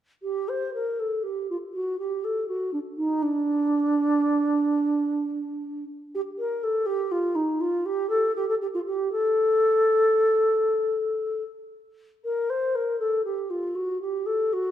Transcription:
0, 0, Header, 1, 2, 480
1, 0, Start_track
1, 0, Key_signature, -2, "minor"
1, 0, Tempo, 526316
1, 212, Time_signature, 12, 3, 24, 8
1, 686, Tempo, 497512
1, 3566, Tempo, 483871
1, 7886, Tempo, 518135
1, 12206, Tempo, 505902
1, 14062, End_track
2, 0, Start_track
2, 0, Title_t, "Flute"
2, 0, Program_c, 0, 73
2, 204, Note_on_c, 0, 67, 65
2, 441, Note_on_c, 0, 72, 61
2, 455, Note_off_c, 0, 67, 0
2, 667, Note_off_c, 0, 72, 0
2, 672, Note_on_c, 0, 70, 56
2, 918, Note_on_c, 0, 69, 58
2, 932, Note_off_c, 0, 70, 0
2, 1146, Note_on_c, 0, 67, 55
2, 1161, Note_off_c, 0, 69, 0
2, 1400, Note_off_c, 0, 67, 0
2, 1407, Note_on_c, 0, 65, 54
2, 1465, Note_off_c, 0, 65, 0
2, 1632, Note_on_c, 0, 66, 55
2, 1870, Note_off_c, 0, 66, 0
2, 1876, Note_on_c, 0, 67, 60
2, 2122, Note_on_c, 0, 69, 59
2, 2137, Note_off_c, 0, 67, 0
2, 2345, Note_off_c, 0, 69, 0
2, 2351, Note_on_c, 0, 66, 59
2, 2589, Note_off_c, 0, 66, 0
2, 2595, Note_on_c, 0, 62, 51
2, 2653, Note_off_c, 0, 62, 0
2, 2824, Note_on_c, 0, 63, 57
2, 3069, Note_on_c, 0, 62, 76
2, 3084, Note_off_c, 0, 63, 0
2, 5650, Note_off_c, 0, 62, 0
2, 5953, Note_on_c, 0, 67, 86
2, 6013, Note_off_c, 0, 67, 0
2, 6190, Note_on_c, 0, 70, 77
2, 6436, Note_on_c, 0, 69, 73
2, 6451, Note_off_c, 0, 70, 0
2, 6662, Note_on_c, 0, 67, 85
2, 6676, Note_off_c, 0, 69, 0
2, 6913, Note_on_c, 0, 65, 76
2, 6928, Note_off_c, 0, 67, 0
2, 7150, Note_on_c, 0, 63, 73
2, 7165, Note_off_c, 0, 65, 0
2, 7403, Note_on_c, 0, 65, 79
2, 7418, Note_off_c, 0, 63, 0
2, 7650, Note_on_c, 0, 67, 82
2, 7664, Note_off_c, 0, 65, 0
2, 7881, Note_off_c, 0, 67, 0
2, 7887, Note_on_c, 0, 69, 82
2, 8116, Note_off_c, 0, 69, 0
2, 8127, Note_on_c, 0, 67, 80
2, 8238, Note_off_c, 0, 67, 0
2, 8253, Note_on_c, 0, 69, 68
2, 8302, Note_off_c, 0, 69, 0
2, 8366, Note_on_c, 0, 67, 67
2, 8417, Note_off_c, 0, 67, 0
2, 8484, Note_on_c, 0, 65, 60
2, 8535, Note_off_c, 0, 65, 0
2, 8601, Note_on_c, 0, 67, 64
2, 8830, Note_off_c, 0, 67, 0
2, 8835, Note_on_c, 0, 69, 84
2, 10968, Note_off_c, 0, 69, 0
2, 11730, Note_on_c, 0, 70, 71
2, 11965, Note_on_c, 0, 72, 68
2, 11979, Note_off_c, 0, 70, 0
2, 12200, Note_on_c, 0, 70, 63
2, 12214, Note_off_c, 0, 72, 0
2, 12426, Note_off_c, 0, 70, 0
2, 12432, Note_on_c, 0, 69, 65
2, 12664, Note_off_c, 0, 69, 0
2, 12670, Note_on_c, 0, 67, 62
2, 12912, Note_on_c, 0, 65, 59
2, 12926, Note_off_c, 0, 67, 0
2, 13149, Note_on_c, 0, 66, 65
2, 13163, Note_off_c, 0, 65, 0
2, 13392, Note_off_c, 0, 66, 0
2, 13398, Note_on_c, 0, 67, 63
2, 13632, Note_on_c, 0, 69, 66
2, 13647, Note_off_c, 0, 67, 0
2, 13887, Note_on_c, 0, 66, 68
2, 13902, Note_off_c, 0, 69, 0
2, 14062, Note_off_c, 0, 66, 0
2, 14062, End_track
0, 0, End_of_file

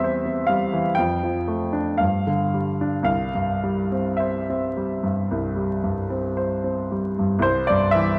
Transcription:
0, 0, Header, 1, 2, 480
1, 0, Start_track
1, 0, Key_signature, 0, "major"
1, 0, Tempo, 961538
1, 484, Tempo, 1039861
1, 964, Tempo, 1100917
1, 1436, Time_signature, 4, 2, 24, 8
1, 2404, Tempo, 1065719
1, 3364, Tempo, 990099
1, 3725, End_track
2, 0, Start_track
2, 0, Title_t, "Grand piano"
2, 0, Program_c, 0, 0
2, 0, Control_c, 0, 64, 127
2, 0, Note_on_c, 0, 40, 48
2, 0, Note_on_c, 0, 52, 37
2, 0, Note_on_c, 0, 55, 40
2, 0, Note_on_c, 0, 60, 38
2, 0, Note_on_c, 0, 72, 65
2, 0, Note_on_c, 0, 76, 73
2, 19, Note_off_c, 0, 72, 0
2, 19, Note_on_c, 0, 72, 40
2, 76, Note_off_c, 0, 60, 0
2, 125, Note_on_c, 0, 60, 38
2, 200, Note_off_c, 0, 72, 0
2, 233, Note_on_c, 0, 77, 64
2, 237, Note_off_c, 0, 76, 0
2, 247, Note_off_c, 0, 55, 0
2, 247, Note_on_c, 0, 55, 39
2, 314, Note_off_c, 0, 60, 0
2, 365, Note_off_c, 0, 52, 0
2, 365, Note_on_c, 0, 52, 35
2, 438, Note_off_c, 0, 55, 0
2, 465, Note_off_c, 0, 40, 0
2, 473, Note_on_c, 0, 79, 68
2, 480, Note_off_c, 0, 77, 0
2, 486, Note_off_c, 0, 52, 0
2, 490, Note_on_c, 0, 41, 44
2, 493, Control_c, 0, 64, 0
2, 563, Control_c, 0, 64, 127
2, 605, Note_on_c, 0, 53, 36
2, 719, Note_on_c, 0, 57, 35
2, 794, Note_off_c, 0, 53, 0
2, 834, Note_on_c, 0, 62, 36
2, 913, Note_off_c, 0, 57, 0
2, 948, Note_on_c, 0, 77, 62
2, 952, Note_off_c, 0, 41, 0
2, 959, Note_off_c, 0, 79, 0
2, 960, Note_off_c, 0, 62, 0
2, 963, Note_on_c, 0, 43, 40
2, 972, Control_c, 0, 64, 0
2, 1062, Control_c, 0, 64, 127
2, 1077, Note_on_c, 0, 50, 35
2, 1195, Note_on_c, 0, 55, 32
2, 1268, Note_off_c, 0, 50, 0
2, 1314, Note_on_c, 0, 62, 35
2, 1386, Note_off_c, 0, 55, 0
2, 1409, Note_off_c, 0, 77, 0
2, 1409, Note_on_c, 0, 36, 44
2, 1415, Note_on_c, 0, 77, 68
2, 1421, Note_off_c, 0, 43, 0
2, 1434, Note_off_c, 0, 62, 0
2, 1445, Control_c, 0, 64, 0
2, 1520, Control_c, 0, 64, 127
2, 1547, Note_on_c, 0, 43, 33
2, 1673, Note_on_c, 0, 55, 34
2, 1746, Note_off_c, 0, 43, 0
2, 1797, Note_on_c, 0, 60, 34
2, 1872, Note_off_c, 0, 55, 0
2, 1905, Note_on_c, 0, 76, 48
2, 1914, Note_off_c, 0, 77, 0
2, 1920, Note_on_c, 0, 72, 37
2, 1997, Note_off_c, 0, 60, 0
2, 2048, Note_on_c, 0, 60, 36
2, 2118, Note_off_c, 0, 72, 0
2, 2167, Note_on_c, 0, 55, 34
2, 2239, Note_off_c, 0, 60, 0
2, 2283, Note_on_c, 0, 43, 32
2, 2356, Note_off_c, 0, 55, 0
2, 2371, Note_off_c, 0, 36, 0
2, 2403, Note_on_c, 0, 36, 36
2, 2472, Note_off_c, 0, 43, 0
2, 2517, Note_on_c, 0, 55, 32
2, 2641, Note_on_c, 0, 43, 33
2, 2711, Note_off_c, 0, 55, 0
2, 2760, Note_on_c, 0, 60, 33
2, 2833, Note_off_c, 0, 43, 0
2, 2880, Note_on_c, 0, 72, 35
2, 2953, Note_off_c, 0, 60, 0
2, 3001, Note_on_c, 0, 60, 33
2, 3075, Note_off_c, 0, 72, 0
2, 3116, Note_off_c, 0, 76, 0
2, 3126, Note_on_c, 0, 55, 34
2, 3198, Note_off_c, 0, 60, 0
2, 3249, Note_on_c, 0, 43, 32
2, 3317, Note_off_c, 0, 55, 0
2, 3332, Note_off_c, 0, 36, 0
2, 3339, Note_on_c, 0, 36, 52
2, 3355, Note_on_c, 0, 72, 74
2, 3364, Note_off_c, 0, 43, 0
2, 3371, Control_c, 0, 64, 0
2, 3441, Control_c, 0, 64, 127
2, 3474, Note_on_c, 0, 74, 69
2, 3479, Note_off_c, 0, 72, 0
2, 3488, Note_on_c, 0, 43, 42
2, 3592, Note_on_c, 0, 76, 80
2, 3599, Note_off_c, 0, 74, 0
2, 3609, Note_on_c, 0, 52, 44
2, 3678, Note_off_c, 0, 43, 0
2, 3725, Note_off_c, 0, 36, 0
2, 3725, Note_off_c, 0, 52, 0
2, 3725, Note_off_c, 0, 76, 0
2, 3725, End_track
0, 0, End_of_file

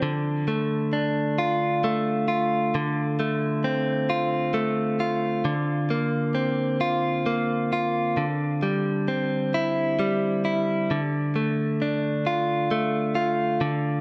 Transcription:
0, 0, Header, 1, 2, 480
1, 0, Start_track
1, 0, Key_signature, -1, "minor"
1, 0, Tempo, 906344
1, 6, Time_signature, 6, 3, 24, 8
1, 7418, End_track
2, 0, Start_track
2, 0, Title_t, "Clean electric guitar"
2, 0, Program_c, 0, 27
2, 0, Note_on_c, 0, 53, 50
2, 0, Note_on_c, 0, 60, 44
2, 0, Note_on_c, 0, 62, 43
2, 0, Note_on_c, 0, 69, 49
2, 14, Note_on_c, 0, 50, 74
2, 57, Note_off_c, 0, 60, 0
2, 251, Note_off_c, 0, 53, 0
2, 253, Note_on_c, 0, 57, 58
2, 492, Note_off_c, 0, 62, 0
2, 492, Note_on_c, 0, 62, 56
2, 733, Note_on_c, 0, 65, 70
2, 899, Note_off_c, 0, 69, 0
2, 972, Note_off_c, 0, 57, 0
2, 974, Note_on_c, 0, 57, 57
2, 1206, Note_off_c, 0, 65, 0
2, 1208, Note_on_c, 0, 65, 59
2, 1449, Note_off_c, 0, 50, 0
2, 1456, Note_on_c, 0, 50, 74
2, 1501, Note_off_c, 0, 62, 0
2, 1690, Note_off_c, 0, 57, 0
2, 1692, Note_on_c, 0, 57, 54
2, 1929, Note_on_c, 0, 60, 60
2, 2167, Note_off_c, 0, 65, 0
2, 2169, Note_on_c, 0, 65, 69
2, 2398, Note_off_c, 0, 57, 0
2, 2404, Note_on_c, 0, 57, 58
2, 2646, Note_off_c, 0, 65, 0
2, 2648, Note_on_c, 0, 65, 60
2, 2884, Note_off_c, 0, 50, 0
2, 2886, Note_on_c, 0, 50, 76
2, 2930, Note_off_c, 0, 57, 0
2, 3127, Note_on_c, 0, 58, 62
2, 3142, Note_off_c, 0, 60, 0
2, 3361, Note_on_c, 0, 60, 60
2, 3603, Note_off_c, 0, 65, 0
2, 3605, Note_on_c, 0, 65, 74
2, 3840, Note_off_c, 0, 58, 0
2, 3846, Note_on_c, 0, 58, 55
2, 4083, Note_off_c, 0, 65, 0
2, 4092, Note_on_c, 0, 65, 62
2, 4322, Note_off_c, 0, 50, 0
2, 4327, Note_on_c, 0, 50, 65
2, 4371, Note_off_c, 0, 58, 0
2, 4374, Note_off_c, 0, 65, 0
2, 4568, Note_on_c, 0, 55, 56
2, 4807, Note_off_c, 0, 60, 0
2, 4809, Note_on_c, 0, 60, 50
2, 5054, Note_on_c, 0, 64, 67
2, 5286, Note_off_c, 0, 55, 0
2, 5293, Note_on_c, 0, 55, 56
2, 5527, Note_off_c, 0, 64, 0
2, 5533, Note_on_c, 0, 64, 60
2, 5775, Note_off_c, 0, 50, 0
2, 5777, Note_on_c, 0, 50, 74
2, 5820, Note_off_c, 0, 64, 0
2, 5821, Note_off_c, 0, 55, 0
2, 5822, Note_off_c, 0, 60, 0
2, 6014, Note_on_c, 0, 57, 59
2, 6258, Note_on_c, 0, 62, 52
2, 6496, Note_on_c, 0, 65, 65
2, 6730, Note_off_c, 0, 57, 0
2, 6732, Note_on_c, 0, 57, 59
2, 6964, Note_off_c, 0, 65, 0
2, 6966, Note_on_c, 0, 65, 61
2, 7202, Note_off_c, 0, 50, 0
2, 7208, Note_on_c, 0, 50, 74
2, 7261, Note_off_c, 0, 62, 0
2, 7418, Note_off_c, 0, 50, 0
2, 7418, Note_off_c, 0, 57, 0
2, 7418, Note_off_c, 0, 65, 0
2, 7418, End_track
0, 0, End_of_file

